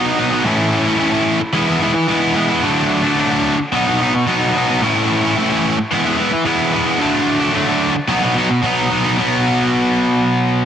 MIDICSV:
0, 0, Header, 1, 3, 480
1, 0, Start_track
1, 0, Tempo, 546448
1, 387, Time_signature, 4, 2, 24, 8
1, 9355, End_track
2, 0, Start_track
2, 0, Title_t, "Overdriven electric guitar"
2, 0, Program_c, 0, 29
2, 0, Note_on_c, 0, 47, 95
2, 0, Note_on_c, 0, 54, 99
2, 0, Note_on_c, 0, 59, 93
2, 0, Note_on_c, 0, 63, 94
2, 139, Note_off_c, 0, 47, 0
2, 150, Note_on_c, 0, 47, 74
2, 154, Note_off_c, 0, 54, 0
2, 160, Note_off_c, 0, 59, 0
2, 164, Note_on_c, 0, 54, 73
2, 171, Note_off_c, 0, 63, 0
2, 171, Note_on_c, 0, 59, 82
2, 182, Note_on_c, 0, 63, 78
2, 259, Note_off_c, 0, 63, 0
2, 269, Note_on_c, 0, 63, 69
2, 278, Note_off_c, 0, 59, 0
2, 288, Note_on_c, 0, 59, 73
2, 290, Note_off_c, 0, 54, 0
2, 300, Note_on_c, 0, 54, 59
2, 374, Note_off_c, 0, 47, 0
2, 374, Note_off_c, 0, 63, 0
2, 383, Note_off_c, 0, 59, 0
2, 384, Note_on_c, 0, 45, 99
2, 389, Note_off_c, 0, 54, 0
2, 394, Note_on_c, 0, 52, 108
2, 401, Note_on_c, 0, 57, 96
2, 407, Note_on_c, 0, 61, 104
2, 415, Note_on_c, 0, 64, 95
2, 733, Note_off_c, 0, 64, 0
2, 743, Note_on_c, 0, 64, 75
2, 753, Note_off_c, 0, 61, 0
2, 763, Note_on_c, 0, 61, 67
2, 764, Note_off_c, 0, 57, 0
2, 775, Note_on_c, 0, 57, 65
2, 850, Note_off_c, 0, 45, 0
2, 855, Note_off_c, 0, 52, 0
2, 861, Note_on_c, 0, 45, 84
2, 865, Note_off_c, 0, 57, 0
2, 865, Note_on_c, 0, 52, 86
2, 870, Note_off_c, 0, 61, 0
2, 876, Note_off_c, 0, 64, 0
2, 876, Note_on_c, 0, 57, 92
2, 881, Note_on_c, 0, 61, 101
2, 887, Note_on_c, 0, 64, 94
2, 965, Note_off_c, 0, 64, 0
2, 976, Note_on_c, 0, 64, 85
2, 982, Note_off_c, 0, 61, 0
2, 993, Note_on_c, 0, 61, 63
2, 997, Note_off_c, 0, 57, 0
2, 1007, Note_on_c, 0, 57, 62
2, 1222, Note_off_c, 0, 64, 0
2, 1224, Note_off_c, 0, 45, 0
2, 1226, Note_off_c, 0, 52, 0
2, 1227, Note_off_c, 0, 61, 0
2, 1230, Note_off_c, 0, 57, 0
2, 1344, Note_on_c, 0, 52, 85
2, 1357, Note_on_c, 0, 56, 90
2, 1366, Note_on_c, 0, 59, 91
2, 1375, Note_on_c, 0, 64, 99
2, 1453, Note_off_c, 0, 64, 0
2, 1463, Note_on_c, 0, 64, 79
2, 1471, Note_off_c, 0, 59, 0
2, 1481, Note_on_c, 0, 59, 61
2, 1483, Note_off_c, 0, 56, 0
2, 1494, Note_on_c, 0, 56, 55
2, 1571, Note_off_c, 0, 52, 0
2, 1582, Note_off_c, 0, 56, 0
2, 1582, Note_on_c, 0, 52, 80
2, 1591, Note_off_c, 0, 59, 0
2, 1592, Note_on_c, 0, 56, 75
2, 1602, Note_off_c, 0, 64, 0
2, 1602, Note_on_c, 0, 59, 76
2, 1613, Note_on_c, 0, 64, 74
2, 1698, Note_off_c, 0, 64, 0
2, 1703, Note_off_c, 0, 59, 0
2, 1707, Note_off_c, 0, 56, 0
2, 1820, Note_off_c, 0, 52, 0
2, 1830, Note_on_c, 0, 52, 89
2, 1843, Note_on_c, 0, 56, 89
2, 1852, Note_on_c, 0, 59, 98
2, 1860, Note_on_c, 0, 64, 102
2, 2054, Note_off_c, 0, 52, 0
2, 2065, Note_on_c, 0, 52, 72
2, 2066, Note_off_c, 0, 56, 0
2, 2075, Note_off_c, 0, 59, 0
2, 2076, Note_on_c, 0, 56, 81
2, 2084, Note_off_c, 0, 64, 0
2, 2086, Note_on_c, 0, 59, 80
2, 2095, Note_on_c, 0, 64, 77
2, 2178, Note_off_c, 0, 64, 0
2, 2189, Note_on_c, 0, 64, 74
2, 2197, Note_off_c, 0, 59, 0
2, 2208, Note_off_c, 0, 56, 0
2, 2208, Note_on_c, 0, 59, 65
2, 2219, Note_on_c, 0, 56, 49
2, 2291, Note_off_c, 0, 52, 0
2, 2293, Note_off_c, 0, 64, 0
2, 2302, Note_off_c, 0, 59, 0
2, 2306, Note_on_c, 0, 50, 97
2, 2308, Note_off_c, 0, 56, 0
2, 2316, Note_on_c, 0, 54, 100
2, 2327, Note_on_c, 0, 57, 92
2, 2337, Note_on_c, 0, 62, 100
2, 2652, Note_off_c, 0, 62, 0
2, 2663, Note_on_c, 0, 62, 69
2, 2670, Note_off_c, 0, 57, 0
2, 2680, Note_on_c, 0, 57, 70
2, 2682, Note_off_c, 0, 54, 0
2, 2692, Note_on_c, 0, 54, 68
2, 2776, Note_off_c, 0, 50, 0
2, 2786, Note_on_c, 0, 50, 91
2, 2787, Note_off_c, 0, 54, 0
2, 2795, Note_off_c, 0, 57, 0
2, 2797, Note_on_c, 0, 54, 93
2, 2805, Note_on_c, 0, 57, 108
2, 2807, Note_off_c, 0, 62, 0
2, 2818, Note_on_c, 0, 62, 99
2, 2891, Note_off_c, 0, 62, 0
2, 2902, Note_on_c, 0, 62, 66
2, 2907, Note_off_c, 0, 57, 0
2, 2918, Note_on_c, 0, 57, 71
2, 2920, Note_off_c, 0, 54, 0
2, 2931, Note_on_c, 0, 54, 65
2, 3135, Note_off_c, 0, 62, 0
2, 3140, Note_off_c, 0, 57, 0
2, 3146, Note_off_c, 0, 50, 0
2, 3147, Note_off_c, 0, 54, 0
2, 3269, Note_on_c, 0, 47, 91
2, 3283, Note_on_c, 0, 54, 95
2, 3292, Note_on_c, 0, 59, 94
2, 3301, Note_on_c, 0, 63, 103
2, 3376, Note_off_c, 0, 63, 0
2, 3386, Note_on_c, 0, 63, 72
2, 3393, Note_off_c, 0, 59, 0
2, 3404, Note_on_c, 0, 59, 64
2, 3408, Note_off_c, 0, 54, 0
2, 3418, Note_on_c, 0, 54, 53
2, 3494, Note_off_c, 0, 47, 0
2, 3505, Note_on_c, 0, 47, 69
2, 3506, Note_off_c, 0, 54, 0
2, 3516, Note_off_c, 0, 59, 0
2, 3517, Note_on_c, 0, 54, 68
2, 3525, Note_off_c, 0, 63, 0
2, 3527, Note_on_c, 0, 59, 79
2, 3536, Note_on_c, 0, 63, 85
2, 3628, Note_off_c, 0, 59, 0
2, 3628, Note_off_c, 0, 63, 0
2, 3630, Note_off_c, 0, 54, 0
2, 3732, Note_off_c, 0, 47, 0
2, 3743, Note_on_c, 0, 47, 98
2, 3757, Note_on_c, 0, 54, 97
2, 3767, Note_on_c, 0, 59, 105
2, 3774, Note_on_c, 0, 63, 90
2, 3972, Note_off_c, 0, 47, 0
2, 3982, Note_on_c, 0, 47, 79
2, 3984, Note_off_c, 0, 54, 0
2, 3994, Note_on_c, 0, 54, 79
2, 3995, Note_off_c, 0, 59, 0
2, 4004, Note_off_c, 0, 63, 0
2, 4005, Note_on_c, 0, 59, 80
2, 4015, Note_on_c, 0, 63, 82
2, 4099, Note_off_c, 0, 63, 0
2, 4110, Note_on_c, 0, 63, 77
2, 4115, Note_off_c, 0, 59, 0
2, 4126, Note_on_c, 0, 59, 69
2, 4129, Note_off_c, 0, 54, 0
2, 4140, Note_on_c, 0, 54, 55
2, 4209, Note_off_c, 0, 47, 0
2, 4213, Note_off_c, 0, 63, 0
2, 4221, Note_off_c, 0, 59, 0
2, 4225, Note_on_c, 0, 45, 95
2, 4228, Note_off_c, 0, 54, 0
2, 4235, Note_on_c, 0, 52, 88
2, 4243, Note_on_c, 0, 57, 93
2, 4250, Note_on_c, 0, 61, 104
2, 4256, Note_on_c, 0, 64, 118
2, 4579, Note_off_c, 0, 64, 0
2, 4589, Note_on_c, 0, 64, 78
2, 4594, Note_off_c, 0, 61, 0
2, 4605, Note_on_c, 0, 61, 74
2, 4607, Note_off_c, 0, 57, 0
2, 4618, Note_on_c, 0, 57, 68
2, 4697, Note_off_c, 0, 45, 0
2, 4705, Note_off_c, 0, 52, 0
2, 4708, Note_on_c, 0, 45, 107
2, 4714, Note_off_c, 0, 57, 0
2, 4716, Note_on_c, 0, 52, 90
2, 4722, Note_off_c, 0, 61, 0
2, 4725, Note_on_c, 0, 57, 99
2, 4730, Note_off_c, 0, 64, 0
2, 4733, Note_on_c, 0, 61, 98
2, 4740, Note_on_c, 0, 64, 105
2, 4815, Note_off_c, 0, 64, 0
2, 4826, Note_on_c, 0, 64, 74
2, 4834, Note_off_c, 0, 61, 0
2, 4844, Note_on_c, 0, 61, 73
2, 4846, Note_off_c, 0, 57, 0
2, 4857, Note_on_c, 0, 57, 58
2, 5062, Note_off_c, 0, 64, 0
2, 5066, Note_off_c, 0, 45, 0
2, 5068, Note_off_c, 0, 61, 0
2, 5070, Note_off_c, 0, 52, 0
2, 5070, Note_off_c, 0, 57, 0
2, 5193, Note_on_c, 0, 52, 81
2, 5204, Note_on_c, 0, 56, 96
2, 5216, Note_on_c, 0, 59, 105
2, 5221, Note_on_c, 0, 64, 101
2, 5293, Note_off_c, 0, 64, 0
2, 5303, Note_on_c, 0, 64, 68
2, 5313, Note_off_c, 0, 59, 0
2, 5323, Note_on_c, 0, 59, 71
2, 5325, Note_off_c, 0, 56, 0
2, 5336, Note_on_c, 0, 56, 55
2, 5416, Note_off_c, 0, 52, 0
2, 5426, Note_on_c, 0, 52, 80
2, 5428, Note_off_c, 0, 56, 0
2, 5439, Note_off_c, 0, 59, 0
2, 5439, Note_on_c, 0, 56, 81
2, 5447, Note_off_c, 0, 64, 0
2, 5450, Note_on_c, 0, 59, 77
2, 5457, Note_on_c, 0, 64, 83
2, 5549, Note_off_c, 0, 64, 0
2, 5555, Note_off_c, 0, 59, 0
2, 5558, Note_off_c, 0, 56, 0
2, 5656, Note_off_c, 0, 52, 0
2, 5667, Note_on_c, 0, 52, 101
2, 5675, Note_on_c, 0, 56, 96
2, 5688, Note_on_c, 0, 59, 99
2, 5696, Note_on_c, 0, 64, 100
2, 5897, Note_off_c, 0, 52, 0
2, 5907, Note_off_c, 0, 56, 0
2, 5907, Note_on_c, 0, 52, 67
2, 5917, Note_off_c, 0, 59, 0
2, 5918, Note_on_c, 0, 56, 84
2, 5928, Note_off_c, 0, 64, 0
2, 5928, Note_on_c, 0, 59, 78
2, 5939, Note_on_c, 0, 64, 76
2, 6018, Note_off_c, 0, 64, 0
2, 6028, Note_on_c, 0, 64, 71
2, 6035, Note_off_c, 0, 59, 0
2, 6045, Note_on_c, 0, 59, 68
2, 6047, Note_off_c, 0, 56, 0
2, 6058, Note_on_c, 0, 56, 62
2, 6132, Note_off_c, 0, 52, 0
2, 6132, Note_off_c, 0, 64, 0
2, 6135, Note_on_c, 0, 50, 105
2, 6140, Note_off_c, 0, 59, 0
2, 6147, Note_off_c, 0, 56, 0
2, 6150, Note_on_c, 0, 54, 92
2, 6160, Note_on_c, 0, 57, 97
2, 6169, Note_on_c, 0, 62, 104
2, 6490, Note_off_c, 0, 62, 0
2, 6501, Note_on_c, 0, 62, 76
2, 6509, Note_off_c, 0, 57, 0
2, 6519, Note_on_c, 0, 57, 67
2, 6521, Note_off_c, 0, 54, 0
2, 6532, Note_on_c, 0, 54, 55
2, 6602, Note_off_c, 0, 50, 0
2, 6613, Note_on_c, 0, 50, 94
2, 6618, Note_off_c, 0, 54, 0
2, 6626, Note_off_c, 0, 57, 0
2, 6629, Note_on_c, 0, 54, 91
2, 6637, Note_off_c, 0, 62, 0
2, 6637, Note_on_c, 0, 57, 96
2, 6648, Note_on_c, 0, 62, 98
2, 6728, Note_off_c, 0, 62, 0
2, 6739, Note_on_c, 0, 62, 71
2, 6746, Note_off_c, 0, 57, 0
2, 6756, Note_on_c, 0, 57, 64
2, 6757, Note_off_c, 0, 54, 0
2, 6767, Note_on_c, 0, 54, 60
2, 6976, Note_off_c, 0, 62, 0
2, 6979, Note_off_c, 0, 50, 0
2, 6981, Note_off_c, 0, 57, 0
2, 6983, Note_off_c, 0, 54, 0
2, 7097, Note_on_c, 0, 47, 93
2, 7107, Note_on_c, 0, 54, 105
2, 7119, Note_on_c, 0, 59, 100
2, 7127, Note_on_c, 0, 63, 99
2, 7200, Note_off_c, 0, 63, 0
2, 7210, Note_on_c, 0, 63, 67
2, 7220, Note_off_c, 0, 59, 0
2, 7231, Note_on_c, 0, 59, 59
2, 7233, Note_off_c, 0, 54, 0
2, 7244, Note_on_c, 0, 54, 61
2, 7324, Note_off_c, 0, 47, 0
2, 7335, Note_on_c, 0, 47, 73
2, 7339, Note_off_c, 0, 54, 0
2, 7349, Note_on_c, 0, 54, 71
2, 7351, Note_off_c, 0, 59, 0
2, 7356, Note_off_c, 0, 63, 0
2, 7361, Note_on_c, 0, 59, 71
2, 7367, Note_on_c, 0, 63, 85
2, 7453, Note_off_c, 0, 63, 0
2, 7459, Note_off_c, 0, 54, 0
2, 7459, Note_off_c, 0, 59, 0
2, 7559, Note_off_c, 0, 47, 0
2, 7570, Note_on_c, 0, 47, 86
2, 7583, Note_on_c, 0, 54, 101
2, 7593, Note_on_c, 0, 59, 98
2, 7605, Note_on_c, 0, 63, 113
2, 7804, Note_off_c, 0, 47, 0
2, 7815, Note_on_c, 0, 47, 68
2, 7820, Note_off_c, 0, 54, 0
2, 7827, Note_off_c, 0, 59, 0
2, 7830, Note_on_c, 0, 54, 81
2, 7836, Note_off_c, 0, 63, 0
2, 7838, Note_on_c, 0, 59, 79
2, 7847, Note_on_c, 0, 63, 70
2, 7924, Note_off_c, 0, 63, 0
2, 7934, Note_on_c, 0, 63, 65
2, 7938, Note_off_c, 0, 59, 0
2, 7949, Note_on_c, 0, 59, 63
2, 7954, Note_off_c, 0, 54, 0
2, 7964, Note_on_c, 0, 54, 52
2, 8046, Note_off_c, 0, 63, 0
2, 8047, Note_off_c, 0, 47, 0
2, 8054, Note_off_c, 0, 59, 0
2, 8057, Note_on_c, 0, 47, 88
2, 8061, Note_off_c, 0, 54, 0
2, 8076, Note_on_c, 0, 54, 87
2, 8088, Note_on_c, 0, 59, 94
2, 9355, Note_off_c, 0, 47, 0
2, 9355, Note_off_c, 0, 54, 0
2, 9355, Note_off_c, 0, 59, 0
2, 9355, End_track
3, 0, Start_track
3, 0, Title_t, "Muted overdriven electric guitar strokes"
3, 1233, Note_on_c, 9, 29, 47
3, 1321, Note_off_c, 9, 29, 0
3, 1708, Note_on_c, 9, 29, 52
3, 1796, Note_off_c, 9, 29, 0
3, 3146, Note_on_c, 9, 29, 45
3, 3233, Note_off_c, 9, 29, 0
3, 3639, Note_on_c, 9, 29, 49
3, 3727, Note_off_c, 9, 29, 0
3, 5072, Note_on_c, 9, 29, 45
3, 5160, Note_off_c, 9, 29, 0
3, 5559, Note_on_c, 9, 29, 50
3, 5647, Note_off_c, 9, 29, 0
3, 6986, Note_on_c, 9, 29, 54
3, 7074, Note_off_c, 9, 29, 0
3, 7464, Note_on_c, 9, 29, 53
3, 7552, Note_off_c, 9, 29, 0
3, 9355, End_track
0, 0, End_of_file